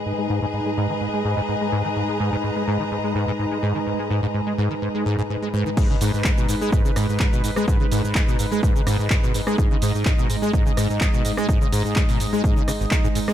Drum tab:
CC |----------------|----------------|----------------|x---------------|
HH |----------------|----------------|----------------|--o---o---o---o-|
SH |----------------|----------------|----------------|x-xxxxxxxxxxxxxx|
CP |----------------|----------------|----------------|----x-------x---|
SD |----------------|----------------|----------------|----------r----r|
BD |----------------|----------------|----------------|o---o---o---o---|

CC |----------------|----------------|----------------|
HH |--o---o---o---o-|--o---o---o---o-|--o--oo---o---o-|
SH |x-xxxxxxxxxxxxxx|x-xxxxxxxxxxxxxx|xxxxxxxxxxxxxxxx|
CP |----x-------x---|----x-------x---|----x-------x---|
SD |----------r----r|----------r----r|----------r----r|
BD |o---o---o---o---|o---o---o---o---|o---o---o---o---|